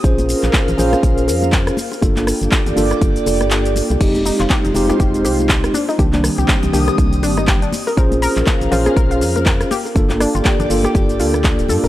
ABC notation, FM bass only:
X:1
M:4/4
L:1/16
Q:"Swing 16ths" 1/4=121
K:Gphr
V:1 name="FM bass" clef=bass
B,,,2 z B,,, z B,,, B,,, z B,,,2 F,,3 z3 | G,,,2 z G,,, z G,,, G,,, z G,,, z F,,, G,,,3 z C,, | F,,,2 z F,,, z F,,, F,,, z F,,,2 C,,3 z3 | C,,2 z C,, z C,, C,, z C,,2 G,,,3 z3 |
B,,,2 z B,,, z B,,, B,,, z B,,,2 F,,3 z3 | G,,,2 z G,,, z G,,, G,,, z G,,,2 D,,3 D,,, G,, D,,, |]